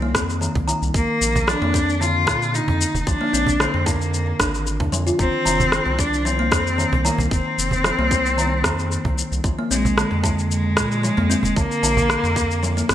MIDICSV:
0, 0, Header, 1, 6, 480
1, 0, Start_track
1, 0, Tempo, 530973
1, 855, Time_signature, 4, 2, 24, 8
1, 11703, End_track
2, 0, Start_track
2, 0, Title_t, "Cello"
2, 0, Program_c, 0, 42
2, 0, Note_on_c, 0, 60, 115
2, 134, Note_off_c, 0, 60, 0
2, 857, Note_on_c, 0, 58, 107
2, 1343, Note_on_c, 0, 62, 109
2, 1356, Note_off_c, 0, 58, 0
2, 1821, Note_on_c, 0, 65, 105
2, 1835, Note_off_c, 0, 62, 0
2, 2301, Note_on_c, 0, 63, 94
2, 2315, Note_off_c, 0, 65, 0
2, 2711, Note_off_c, 0, 63, 0
2, 2717, Note_on_c, 0, 63, 73
2, 2786, Note_on_c, 0, 62, 116
2, 2800, Note_off_c, 0, 63, 0
2, 3255, Note_on_c, 0, 60, 98
2, 3269, Note_off_c, 0, 62, 0
2, 3499, Note_on_c, 0, 58, 83
2, 3513, Note_off_c, 0, 60, 0
2, 4217, Note_off_c, 0, 58, 0
2, 4706, Note_on_c, 0, 60, 111
2, 5415, Note_on_c, 0, 62, 100
2, 5428, Note_off_c, 0, 60, 0
2, 5659, Note_on_c, 0, 60, 100
2, 5673, Note_off_c, 0, 62, 0
2, 6375, Note_on_c, 0, 58, 89
2, 6389, Note_off_c, 0, 60, 0
2, 6606, Note_off_c, 0, 58, 0
2, 6612, Note_on_c, 0, 60, 110
2, 8257, Note_off_c, 0, 60, 0
2, 8777, Note_on_c, 0, 56, 99
2, 9460, Note_off_c, 0, 56, 0
2, 9500, Note_on_c, 0, 56, 107
2, 10465, Note_on_c, 0, 58, 127
2, 10479, Note_off_c, 0, 56, 0
2, 11703, Note_off_c, 0, 58, 0
2, 11703, End_track
3, 0, Start_track
3, 0, Title_t, "Kalimba"
3, 0, Program_c, 1, 108
3, 21, Note_on_c, 1, 58, 72
3, 128, Note_off_c, 1, 58, 0
3, 131, Note_on_c, 1, 60, 68
3, 206, Note_off_c, 1, 60, 0
3, 370, Note_on_c, 1, 51, 82
3, 601, Note_off_c, 1, 51, 0
3, 612, Note_on_c, 1, 51, 101
3, 853, Note_off_c, 1, 51, 0
3, 1333, Note_on_c, 1, 53, 80
3, 1455, Note_off_c, 1, 53, 0
3, 1462, Note_on_c, 1, 58, 72
3, 1569, Note_off_c, 1, 58, 0
3, 1572, Note_on_c, 1, 60, 74
3, 1646, Note_off_c, 1, 60, 0
3, 1817, Note_on_c, 1, 50, 83
3, 2041, Note_off_c, 1, 50, 0
3, 2051, Note_on_c, 1, 50, 99
3, 2522, Note_off_c, 1, 50, 0
3, 2774, Note_on_c, 1, 53, 80
3, 2895, Note_off_c, 1, 53, 0
3, 2900, Note_on_c, 1, 58, 79
3, 3008, Note_off_c, 1, 58, 0
3, 3013, Note_on_c, 1, 60, 76
3, 3086, Note_off_c, 1, 60, 0
3, 3254, Note_on_c, 1, 50, 80
3, 3481, Note_off_c, 1, 50, 0
3, 3492, Note_on_c, 1, 50, 96
3, 3962, Note_off_c, 1, 50, 0
3, 3973, Note_on_c, 1, 62, 65
3, 4089, Note_off_c, 1, 62, 0
3, 4339, Note_on_c, 1, 50, 77
3, 4448, Note_off_c, 1, 50, 0
3, 4451, Note_on_c, 1, 53, 104
3, 4568, Note_off_c, 1, 53, 0
3, 4580, Note_on_c, 1, 65, 77
3, 4688, Note_off_c, 1, 65, 0
3, 4692, Note_on_c, 1, 51, 77
3, 4922, Note_off_c, 1, 51, 0
3, 4932, Note_on_c, 1, 51, 102
3, 5402, Note_off_c, 1, 51, 0
3, 5652, Note_on_c, 1, 53, 89
3, 5775, Note_off_c, 1, 53, 0
3, 5777, Note_on_c, 1, 58, 79
3, 5887, Note_off_c, 1, 58, 0
3, 5889, Note_on_c, 1, 60, 71
3, 5964, Note_off_c, 1, 60, 0
3, 6131, Note_on_c, 1, 51, 86
3, 6362, Note_off_c, 1, 51, 0
3, 6371, Note_on_c, 1, 51, 101
3, 6842, Note_off_c, 1, 51, 0
3, 7092, Note_on_c, 1, 53, 78
3, 7214, Note_off_c, 1, 53, 0
3, 7221, Note_on_c, 1, 58, 72
3, 7328, Note_off_c, 1, 58, 0
3, 7336, Note_on_c, 1, 60, 76
3, 7408, Note_off_c, 1, 60, 0
3, 7575, Note_on_c, 1, 51, 89
3, 7804, Note_off_c, 1, 51, 0
3, 7815, Note_on_c, 1, 51, 99
3, 8284, Note_off_c, 1, 51, 0
3, 8537, Note_on_c, 1, 53, 78
3, 8657, Note_off_c, 1, 53, 0
3, 8666, Note_on_c, 1, 58, 85
3, 8771, Note_off_c, 1, 58, 0
3, 8777, Note_on_c, 1, 60, 77
3, 8849, Note_off_c, 1, 60, 0
3, 9019, Note_on_c, 1, 50, 77
3, 9246, Note_off_c, 1, 50, 0
3, 9255, Note_on_c, 1, 50, 106
3, 9724, Note_off_c, 1, 50, 0
3, 9975, Note_on_c, 1, 53, 87
3, 10096, Note_off_c, 1, 53, 0
3, 10100, Note_on_c, 1, 58, 77
3, 10208, Note_off_c, 1, 58, 0
3, 10213, Note_on_c, 1, 60, 79
3, 10287, Note_off_c, 1, 60, 0
3, 10454, Note_on_c, 1, 50, 86
3, 10683, Note_off_c, 1, 50, 0
3, 10696, Note_on_c, 1, 50, 103
3, 11164, Note_off_c, 1, 50, 0
3, 11415, Note_on_c, 1, 53, 89
3, 11536, Note_off_c, 1, 53, 0
3, 11545, Note_on_c, 1, 58, 76
3, 11650, Note_off_c, 1, 58, 0
3, 11658, Note_on_c, 1, 60, 72
3, 11703, Note_off_c, 1, 60, 0
3, 11703, End_track
4, 0, Start_track
4, 0, Title_t, "Analog synth bass"
4, 0, Program_c, 2, 38
4, 0, Note_on_c, 2, 36, 93
4, 135, Note_on_c, 2, 41, 85
4, 148, Note_off_c, 2, 36, 0
4, 437, Note_off_c, 2, 41, 0
4, 500, Note_on_c, 2, 36, 89
4, 660, Note_off_c, 2, 36, 0
4, 742, Note_on_c, 2, 36, 106
4, 819, Note_off_c, 2, 36, 0
4, 853, Note_on_c, 2, 34, 93
4, 941, Note_off_c, 2, 34, 0
4, 1095, Note_on_c, 2, 34, 83
4, 1397, Note_off_c, 2, 34, 0
4, 1463, Note_on_c, 2, 41, 89
4, 2053, Note_on_c, 2, 46, 85
4, 2067, Note_off_c, 2, 41, 0
4, 2357, Note_off_c, 2, 46, 0
4, 2420, Note_on_c, 2, 41, 93
4, 2580, Note_off_c, 2, 41, 0
4, 2662, Note_on_c, 2, 29, 98
4, 2739, Note_off_c, 2, 29, 0
4, 2775, Note_on_c, 2, 34, 93
4, 2862, Note_off_c, 2, 34, 0
4, 3014, Note_on_c, 2, 34, 76
4, 3317, Note_off_c, 2, 34, 0
4, 3382, Note_on_c, 2, 41, 85
4, 3917, Note_off_c, 2, 41, 0
4, 3974, Note_on_c, 2, 32, 99
4, 4341, Note_on_c, 2, 41, 98
4, 4354, Note_off_c, 2, 32, 0
4, 4418, Note_off_c, 2, 41, 0
4, 4453, Note_on_c, 2, 41, 90
4, 4622, Note_off_c, 2, 41, 0
4, 4694, Note_on_c, 2, 29, 93
4, 4781, Note_off_c, 2, 29, 0
4, 4934, Note_on_c, 2, 29, 80
4, 5237, Note_off_c, 2, 29, 0
4, 5297, Note_on_c, 2, 36, 91
4, 5892, Note_on_c, 2, 41, 89
4, 5905, Note_off_c, 2, 36, 0
4, 6196, Note_off_c, 2, 41, 0
4, 6260, Note_on_c, 2, 36, 94
4, 6420, Note_off_c, 2, 36, 0
4, 6496, Note_on_c, 2, 36, 98
4, 6576, Note_off_c, 2, 36, 0
4, 6611, Note_on_c, 2, 29, 95
4, 6700, Note_off_c, 2, 29, 0
4, 6853, Note_on_c, 2, 29, 80
4, 7157, Note_off_c, 2, 29, 0
4, 7219, Note_on_c, 2, 36, 94
4, 7814, Note_on_c, 2, 41, 86
4, 7827, Note_off_c, 2, 36, 0
4, 8117, Note_off_c, 2, 41, 0
4, 8181, Note_on_c, 2, 36, 93
4, 8340, Note_off_c, 2, 36, 0
4, 8424, Note_on_c, 2, 36, 99
4, 8500, Note_off_c, 2, 36, 0
4, 8534, Note_on_c, 2, 34, 90
4, 8621, Note_off_c, 2, 34, 0
4, 8776, Note_on_c, 2, 34, 78
4, 9078, Note_off_c, 2, 34, 0
4, 9146, Note_on_c, 2, 41, 89
4, 9735, Note_on_c, 2, 46, 86
4, 9748, Note_off_c, 2, 41, 0
4, 10037, Note_off_c, 2, 46, 0
4, 10105, Note_on_c, 2, 41, 94
4, 10263, Note_off_c, 2, 41, 0
4, 10344, Note_on_c, 2, 29, 102
4, 10420, Note_off_c, 2, 29, 0
4, 10455, Note_on_c, 2, 34, 100
4, 10542, Note_off_c, 2, 34, 0
4, 10694, Note_on_c, 2, 34, 80
4, 10997, Note_off_c, 2, 34, 0
4, 11061, Note_on_c, 2, 41, 96
4, 11597, Note_off_c, 2, 41, 0
4, 11656, Note_on_c, 2, 34, 77
4, 11703, Note_off_c, 2, 34, 0
4, 11703, End_track
5, 0, Start_track
5, 0, Title_t, "Cajon"
5, 500, Note_on_c, 9, 38, 63
5, 504, Note_on_c, 9, 36, 89
5, 590, Note_off_c, 9, 38, 0
5, 594, Note_off_c, 9, 36, 0
5, 1226, Note_on_c, 9, 36, 98
5, 1316, Note_off_c, 9, 36, 0
5, 1464, Note_on_c, 9, 38, 65
5, 1555, Note_off_c, 9, 38, 0
5, 2059, Note_on_c, 9, 38, 62
5, 2150, Note_off_c, 9, 38, 0
5, 2422, Note_on_c, 9, 38, 70
5, 2426, Note_on_c, 9, 36, 95
5, 2512, Note_off_c, 9, 38, 0
5, 2517, Note_off_c, 9, 36, 0
5, 2663, Note_on_c, 9, 36, 80
5, 2754, Note_off_c, 9, 36, 0
5, 3134, Note_on_c, 9, 36, 101
5, 3224, Note_off_c, 9, 36, 0
5, 3380, Note_on_c, 9, 38, 60
5, 3470, Note_off_c, 9, 38, 0
5, 4340, Note_on_c, 9, 38, 66
5, 4344, Note_on_c, 9, 36, 98
5, 4430, Note_off_c, 9, 38, 0
5, 4434, Note_off_c, 9, 36, 0
5, 5062, Note_on_c, 9, 36, 104
5, 5152, Note_off_c, 9, 36, 0
5, 5293, Note_on_c, 9, 38, 58
5, 5383, Note_off_c, 9, 38, 0
5, 5892, Note_on_c, 9, 38, 55
5, 5983, Note_off_c, 9, 38, 0
5, 6261, Note_on_c, 9, 38, 68
5, 6264, Note_on_c, 9, 36, 85
5, 6352, Note_off_c, 9, 38, 0
5, 6354, Note_off_c, 9, 36, 0
5, 6494, Note_on_c, 9, 36, 92
5, 6585, Note_off_c, 9, 36, 0
5, 6970, Note_on_c, 9, 36, 84
5, 7061, Note_off_c, 9, 36, 0
5, 7220, Note_on_c, 9, 38, 52
5, 7311, Note_off_c, 9, 38, 0
5, 8180, Note_on_c, 9, 38, 64
5, 8181, Note_on_c, 9, 36, 80
5, 8271, Note_off_c, 9, 36, 0
5, 8271, Note_off_c, 9, 38, 0
5, 8904, Note_on_c, 9, 36, 87
5, 8994, Note_off_c, 9, 36, 0
5, 9138, Note_on_c, 9, 38, 55
5, 9228, Note_off_c, 9, 38, 0
5, 9739, Note_on_c, 9, 38, 57
5, 9829, Note_off_c, 9, 38, 0
5, 10106, Note_on_c, 9, 36, 74
5, 10106, Note_on_c, 9, 38, 56
5, 10196, Note_off_c, 9, 36, 0
5, 10197, Note_off_c, 9, 38, 0
5, 10331, Note_on_c, 9, 36, 81
5, 10422, Note_off_c, 9, 36, 0
5, 10821, Note_on_c, 9, 36, 98
5, 10911, Note_off_c, 9, 36, 0
5, 11062, Note_on_c, 9, 38, 59
5, 11152, Note_off_c, 9, 38, 0
5, 11703, End_track
6, 0, Start_track
6, 0, Title_t, "Drums"
6, 133, Note_on_c, 9, 37, 77
6, 134, Note_on_c, 9, 36, 105
6, 140, Note_on_c, 9, 82, 77
6, 223, Note_off_c, 9, 37, 0
6, 224, Note_off_c, 9, 36, 0
6, 231, Note_off_c, 9, 82, 0
6, 270, Note_on_c, 9, 82, 34
6, 360, Note_off_c, 9, 82, 0
6, 380, Note_on_c, 9, 82, 44
6, 471, Note_off_c, 9, 82, 0
6, 501, Note_on_c, 9, 36, 66
6, 592, Note_off_c, 9, 36, 0
6, 621, Note_on_c, 9, 82, 74
6, 711, Note_off_c, 9, 82, 0
6, 748, Note_on_c, 9, 82, 33
6, 838, Note_off_c, 9, 82, 0
6, 853, Note_on_c, 9, 36, 127
6, 861, Note_on_c, 9, 82, 48
6, 944, Note_off_c, 9, 36, 0
6, 951, Note_off_c, 9, 82, 0
6, 1102, Note_on_c, 9, 82, 84
6, 1193, Note_off_c, 9, 82, 0
6, 1230, Note_on_c, 9, 82, 34
6, 1320, Note_off_c, 9, 82, 0
6, 1336, Note_on_c, 9, 37, 83
6, 1344, Note_on_c, 9, 82, 49
6, 1427, Note_off_c, 9, 37, 0
6, 1434, Note_off_c, 9, 82, 0
6, 1573, Note_on_c, 9, 36, 115
6, 1584, Note_on_c, 9, 82, 77
6, 1664, Note_off_c, 9, 36, 0
6, 1674, Note_off_c, 9, 82, 0
6, 1713, Note_on_c, 9, 82, 33
6, 1804, Note_off_c, 9, 82, 0
6, 1826, Note_on_c, 9, 82, 45
6, 1917, Note_off_c, 9, 82, 0
6, 2054, Note_on_c, 9, 36, 108
6, 2057, Note_on_c, 9, 37, 79
6, 2065, Note_on_c, 9, 82, 79
6, 2144, Note_off_c, 9, 36, 0
6, 2147, Note_off_c, 9, 37, 0
6, 2155, Note_off_c, 9, 82, 0
6, 2190, Note_on_c, 9, 82, 36
6, 2281, Note_off_c, 9, 82, 0
6, 2303, Note_on_c, 9, 82, 43
6, 2393, Note_off_c, 9, 82, 0
6, 2544, Note_on_c, 9, 82, 83
6, 2634, Note_off_c, 9, 82, 0
6, 2672, Note_on_c, 9, 82, 34
6, 2762, Note_off_c, 9, 82, 0
6, 2775, Note_on_c, 9, 36, 127
6, 2783, Note_on_c, 9, 82, 47
6, 2865, Note_off_c, 9, 36, 0
6, 2873, Note_off_c, 9, 82, 0
6, 3023, Note_on_c, 9, 82, 84
6, 3113, Note_off_c, 9, 82, 0
6, 3151, Note_on_c, 9, 82, 31
6, 3242, Note_off_c, 9, 82, 0
6, 3256, Note_on_c, 9, 37, 75
6, 3263, Note_on_c, 9, 82, 45
6, 3346, Note_off_c, 9, 37, 0
6, 3354, Note_off_c, 9, 82, 0
6, 3494, Note_on_c, 9, 36, 105
6, 3503, Note_on_c, 9, 82, 85
6, 3584, Note_off_c, 9, 36, 0
6, 3593, Note_off_c, 9, 82, 0
6, 3632, Note_on_c, 9, 82, 36
6, 3722, Note_off_c, 9, 82, 0
6, 3743, Note_on_c, 9, 82, 46
6, 3833, Note_off_c, 9, 82, 0
6, 3974, Note_on_c, 9, 36, 106
6, 3975, Note_on_c, 9, 37, 77
6, 3983, Note_on_c, 9, 82, 81
6, 4064, Note_off_c, 9, 36, 0
6, 4066, Note_off_c, 9, 37, 0
6, 4073, Note_off_c, 9, 82, 0
6, 4110, Note_on_c, 9, 82, 34
6, 4200, Note_off_c, 9, 82, 0
6, 4219, Note_on_c, 9, 82, 43
6, 4310, Note_off_c, 9, 82, 0
6, 4340, Note_on_c, 9, 36, 68
6, 4431, Note_off_c, 9, 36, 0
6, 4459, Note_on_c, 9, 82, 75
6, 4549, Note_off_c, 9, 82, 0
6, 4585, Note_on_c, 9, 82, 37
6, 4676, Note_off_c, 9, 82, 0
6, 4693, Note_on_c, 9, 36, 113
6, 4699, Note_on_c, 9, 82, 44
6, 4784, Note_off_c, 9, 36, 0
6, 4789, Note_off_c, 9, 82, 0
6, 4940, Note_on_c, 9, 82, 83
6, 5030, Note_off_c, 9, 82, 0
6, 5067, Note_on_c, 9, 82, 32
6, 5157, Note_off_c, 9, 82, 0
6, 5172, Note_on_c, 9, 37, 77
6, 5180, Note_on_c, 9, 82, 46
6, 5263, Note_off_c, 9, 37, 0
6, 5270, Note_off_c, 9, 82, 0
6, 5412, Note_on_c, 9, 36, 114
6, 5420, Note_on_c, 9, 82, 78
6, 5502, Note_off_c, 9, 36, 0
6, 5510, Note_off_c, 9, 82, 0
6, 5547, Note_on_c, 9, 82, 33
6, 5638, Note_off_c, 9, 82, 0
6, 5661, Note_on_c, 9, 82, 47
6, 5751, Note_off_c, 9, 82, 0
6, 5892, Note_on_c, 9, 36, 109
6, 5894, Note_on_c, 9, 37, 71
6, 5902, Note_on_c, 9, 82, 78
6, 5982, Note_off_c, 9, 36, 0
6, 5985, Note_off_c, 9, 37, 0
6, 5992, Note_off_c, 9, 82, 0
6, 6030, Note_on_c, 9, 82, 36
6, 6120, Note_off_c, 9, 82, 0
6, 6143, Note_on_c, 9, 82, 42
6, 6234, Note_off_c, 9, 82, 0
6, 6381, Note_on_c, 9, 82, 76
6, 6471, Note_off_c, 9, 82, 0
6, 6510, Note_on_c, 9, 82, 34
6, 6600, Note_off_c, 9, 82, 0
6, 6611, Note_on_c, 9, 36, 113
6, 6622, Note_on_c, 9, 82, 43
6, 6702, Note_off_c, 9, 36, 0
6, 6713, Note_off_c, 9, 82, 0
6, 6861, Note_on_c, 9, 82, 81
6, 6951, Note_off_c, 9, 82, 0
6, 6987, Note_on_c, 9, 82, 29
6, 7078, Note_off_c, 9, 82, 0
6, 7091, Note_on_c, 9, 37, 73
6, 7098, Note_on_c, 9, 82, 46
6, 7181, Note_off_c, 9, 37, 0
6, 7189, Note_off_c, 9, 82, 0
6, 7332, Note_on_c, 9, 36, 105
6, 7338, Note_on_c, 9, 82, 72
6, 7423, Note_off_c, 9, 36, 0
6, 7429, Note_off_c, 9, 82, 0
6, 7467, Note_on_c, 9, 82, 33
6, 7558, Note_off_c, 9, 82, 0
6, 7579, Note_on_c, 9, 82, 43
6, 7670, Note_off_c, 9, 82, 0
6, 7811, Note_on_c, 9, 37, 75
6, 7813, Note_on_c, 9, 36, 98
6, 7819, Note_on_c, 9, 82, 79
6, 7902, Note_off_c, 9, 37, 0
6, 7903, Note_off_c, 9, 36, 0
6, 7909, Note_off_c, 9, 82, 0
6, 7947, Note_on_c, 9, 82, 31
6, 8038, Note_off_c, 9, 82, 0
6, 8062, Note_on_c, 9, 82, 39
6, 8152, Note_off_c, 9, 82, 0
6, 8181, Note_on_c, 9, 36, 61
6, 8271, Note_off_c, 9, 36, 0
6, 8302, Note_on_c, 9, 82, 74
6, 8392, Note_off_c, 9, 82, 0
6, 8429, Note_on_c, 9, 82, 32
6, 8520, Note_off_c, 9, 82, 0
6, 8534, Note_on_c, 9, 36, 118
6, 8542, Note_on_c, 9, 82, 43
6, 8624, Note_off_c, 9, 36, 0
6, 8632, Note_off_c, 9, 82, 0
6, 8782, Note_on_c, 9, 82, 78
6, 8873, Note_off_c, 9, 82, 0
6, 8912, Note_on_c, 9, 82, 29
6, 9003, Note_off_c, 9, 82, 0
6, 9018, Note_on_c, 9, 37, 75
6, 9026, Note_on_c, 9, 82, 42
6, 9108, Note_off_c, 9, 37, 0
6, 9116, Note_off_c, 9, 82, 0
6, 9254, Note_on_c, 9, 36, 107
6, 9265, Note_on_c, 9, 82, 75
6, 9344, Note_off_c, 9, 36, 0
6, 9355, Note_off_c, 9, 82, 0
6, 9392, Note_on_c, 9, 82, 31
6, 9482, Note_off_c, 9, 82, 0
6, 9504, Note_on_c, 9, 82, 45
6, 9595, Note_off_c, 9, 82, 0
6, 9734, Note_on_c, 9, 36, 103
6, 9734, Note_on_c, 9, 37, 80
6, 9741, Note_on_c, 9, 82, 74
6, 9824, Note_off_c, 9, 36, 0
6, 9824, Note_off_c, 9, 37, 0
6, 9832, Note_off_c, 9, 82, 0
6, 9869, Note_on_c, 9, 82, 31
6, 9959, Note_off_c, 9, 82, 0
6, 9983, Note_on_c, 9, 82, 45
6, 10073, Note_off_c, 9, 82, 0
6, 10224, Note_on_c, 9, 82, 73
6, 10314, Note_off_c, 9, 82, 0
6, 10351, Note_on_c, 9, 82, 32
6, 10442, Note_off_c, 9, 82, 0
6, 10455, Note_on_c, 9, 36, 109
6, 10463, Note_on_c, 9, 82, 46
6, 10545, Note_off_c, 9, 36, 0
6, 10553, Note_off_c, 9, 82, 0
6, 10591, Note_on_c, 9, 82, 32
6, 10682, Note_off_c, 9, 82, 0
6, 10702, Note_on_c, 9, 82, 82
6, 10793, Note_off_c, 9, 82, 0
6, 10830, Note_on_c, 9, 82, 31
6, 10921, Note_off_c, 9, 82, 0
6, 10936, Note_on_c, 9, 37, 83
6, 10943, Note_on_c, 9, 82, 45
6, 11026, Note_off_c, 9, 37, 0
6, 11034, Note_off_c, 9, 82, 0
6, 11069, Note_on_c, 9, 82, 28
6, 11160, Note_off_c, 9, 82, 0
6, 11175, Note_on_c, 9, 36, 105
6, 11182, Note_on_c, 9, 82, 76
6, 11265, Note_off_c, 9, 36, 0
6, 11273, Note_off_c, 9, 82, 0
6, 11309, Note_on_c, 9, 82, 32
6, 11400, Note_off_c, 9, 82, 0
6, 11423, Note_on_c, 9, 82, 43
6, 11514, Note_off_c, 9, 82, 0
6, 11550, Note_on_c, 9, 82, 31
6, 11641, Note_off_c, 9, 82, 0
6, 11655, Note_on_c, 9, 36, 105
6, 11655, Note_on_c, 9, 37, 78
6, 11663, Note_on_c, 9, 82, 76
6, 11703, Note_off_c, 9, 36, 0
6, 11703, Note_off_c, 9, 37, 0
6, 11703, Note_off_c, 9, 82, 0
6, 11703, End_track
0, 0, End_of_file